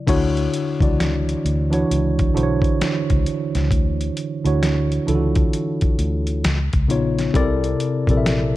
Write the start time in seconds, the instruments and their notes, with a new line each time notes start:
Already playing: tine electric piano E4
0.07 fingered electric bass D2, tine electric piano D3 D4 E4 F#4 C#5, kick, closed hi-hat, crash
0.37 closed hi-hat
0.54 closed hi-hat
0.80 fingered electric bass C#2, tine electric piano E3 D4 E4 F#4 D5, kick, closed hi-hat
1.00 snare, closed hi-hat
1.29 closed hi-hat
1.45 fingered electric bass D2, closed hi-hat
1.71 tine electric piano E3 D4 E4 F#4 C#5, closed hi-hat
1.91 fingered electric bass C#2, closed hi-hat
2.19 kick, closed hi-hat
2.34 fingered electric bass B1, tine electric piano D3 D4 E4 F#4 C5, closed hi-hat
2.43 tine electric piano C#5
2.62 kick, closed hi-hat
2.81 muted fingered electric bass stroke, snare, closed hi-hat
3.10 fingered electric bass C#2, kick, closed hi-hat
3.26 closed hi-hat
3.55 fingered electric bass C#2, snare, closed hi-hat
3.71 fingered electric bass D2, kick, closed hi-hat
4.01 closed hi-hat
4.17 closed hi-hat
4.44 fingered electric bass D2, tine electric piano D3 D4 E4 F#4 C#5, closed hi-hat
4.63 snare, closed hi-hat
4.92 closed hi-hat
5.06 fingered electric bass C#2, tine electric piano E3 D4 E4 F4 A4, closed hi-hat
5.15 tine electric piano F#4
5.35 kick, closed hi-hat
5.53 closed hi-hat
5.81 kick, closed hi-hat
5.99 fingered electric bass D2, closed hi-hat
6.27 closed hi-hat
6.44 fingered electric bass C#2, snare, closed hi-hat
6.73 fingered electric bass C#2, kick, closed hi-hat
6.88 fingered electric bass A#1, tine electric piano C#3 B3 D#4 F4 C#5, closed hi-hat
7.19 snare, closed hi-hat
7.34 fingered electric bass C2, tine electric piano C3 C4 E4 A4 A#4 D5, kick, closed hi-hat
7.64 closed hi-hat
7.80 closed hi-hat
8.07 fingered electric bass A#1, tine electric piano C3 C4 E4 A4 A#4 D5, kick, closed hi-hat
8.17 tine electric piano E5
8.26 snare, closed hi-hat